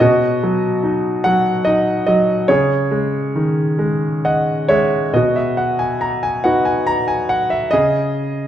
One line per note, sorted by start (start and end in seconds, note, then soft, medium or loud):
0.00 2.45 B2 medium
0.00 1.21 F#4 soft
0.00 1.28 D#5 medium
0.43 1.24 F#3 soft
0.83 1.65 D#4 soft
1.24 2.07 F#3 soft
1.24 1.67 F#5 medium
1.65 2.47 D#4 soft
1.65 2.05 D#5 medium
2.07 2.48 F#3 soft
2.07 2.50 D#5 medium
2.48 5.10 C#3 medium
2.48 4.21 G#4 soft
2.48 4.20 C#5 medium
2.91 3.77 G#3 soft
3.36 5.10 D#3 soft
3.79 4.68 G#3 soft
4.25 5.11 D#5 soft
4.25 4.66 F#5 medium
4.68 5.13 G#3 soft
4.68 5.15 C#5 medium
4.68 5.11 E5 medium
5.13 7.69 B2 soft
5.13 6.42 F#4 soft
5.13 5.36 D#5 medium
5.36 5.59 E5 soft
5.57 5.80 F#5 medium
5.79 6.02 G#5 medium
6.01 6.24 A#5 medium
6.23 6.45 G#5 medium
6.44 7.69 B3 soft
6.44 7.70 D#4 soft
6.44 7.70 F#4 soft
6.44 6.66 F#5 medium
6.65 6.88 G#5 medium
6.87 7.07 A#5 medium
7.08 7.28 G#5 medium
7.29 7.52 F#5 medium
7.50 7.73 E5 medium
7.71 8.47 C#3 medium
7.71 8.47 G#4 soft
7.71 8.47 D#5 medium